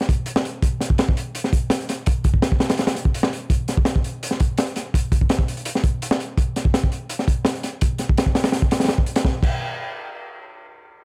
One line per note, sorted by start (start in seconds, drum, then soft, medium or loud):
0.01 snare soft
0.09 kick loud
0.09 closed hi-hat medium
0.26 closed hi-hat medium
0.36 snare loud
0.45 closed hi-hat medium
0.62 kick loud
0.62 closed hi-hat medium
0.81 snare soft
0.81 closed hi-hat medium
0.90 kick medium
0.98 snare loud
0.98 closed hi-hat medium
1.09 kick loud
1.17 closed hi-hat medium
1.35 closed hi-hat medium
1.44 snare soft
1.53 kick loud
1.53 closed hi-hat medium
1.70 snare loud
1.70 closed hi-hat medium
1.80 closed hi-hat soft
1.89 snare soft
1.89 closed hi-hat medium
2.06 kick loud
2.06 closed hi-hat loud
2.24 kick loud
2.24 closed hi-hat medium
2.34 kick medium
2.42 snare loud
2.42 closed hi-hat medium
2.52 kick loud
2.60 snare loud
2.60 closed hi-hat medium
2.69 snare loud
2.69 closed hi-hat medium
2.77 snare loud
2.77 closed hi-hat medium
2.87 snare loud
2.87 closed hi-hat medium
2.95 snare soft
2.95 closed hi-hat medium
3.05 kick medium
3.14 closed hi-hat medium
3.23 snare loud
3.33 closed hi-hat medium
3.50 kick loud
3.50 closed hi-hat medium
3.68 snare soft
3.68 closed hi-hat medium
3.77 kick loud
3.85 snare loud
3.85 closed hi-hat medium
3.96 kick loud
4.04 closed hi-hat medium
4.23 closed hi-hat medium
4.31 snare soft
4.40 kick loud
4.40 closed hi-hat medium
4.58 snare loud
4.58 closed hi-hat medium
4.67 closed hi-hat soft
4.76 snare soft
4.76 closed hi-hat medium
4.94 kick loud
4.94 closed hi-hat loud
5.12 kick loud
5.12 closed hi-hat medium
5.21 kick medium
5.29 snare loud
5.29 closed hi-hat medium
5.39 kick medium
5.48 closed hi-hat medium
5.57 closed hi-hat soft
5.65 closed hi-hat loud
5.75 snare soft
5.84 kick loud
5.84 closed hi-hat medium
6.02 closed hi-hat medium
6.11 snare loud
6.20 closed hi-hat medium
6.38 kick loud
6.38 closed hi-hat medium
6.56 snare soft
6.56 closed hi-hat medium
6.65 kick loud
6.74 snare loud
6.74 closed hi-hat loud
6.84 kick medium
6.92 closed hi-hat medium
7.09 closed hi-hat medium
7.19 snare soft
7.28 kick medium
7.28 closed hi-hat medium
7.45 snare loud
7.45 closed hi-hat medium
7.55 closed hi-hat soft
7.63 snare soft
7.63 closed hi-hat medium
7.81 kick loud
7.81 closed hi-hat medium
7.98 snare soft
7.98 closed hi-hat medium
8.09 kick medium
8.18 snare loud
8.18 closed hi-hat medium
8.26 kick medium
8.35 snare loud
8.35 closed hi-hat medium
8.44 snare loud
8.44 closed hi-hat medium
8.52 snare loud
8.52 closed hi-hat medium
8.62 kick medium
8.71 snare loud
8.71 closed hi-hat medium
8.80 snare medium
8.80 closed hi-hat medium
8.84 snare medium
8.84 closed hi-hat medium
8.88 snare loud
8.88 closed hi-hat medium
8.98 kick medium
9.06 closed hi-hat medium
9.16 snare loud
9.16 closed hi-hat medium
9.25 kick loud
9.25 snare medium
9.43 kick loud
9.43 crash medium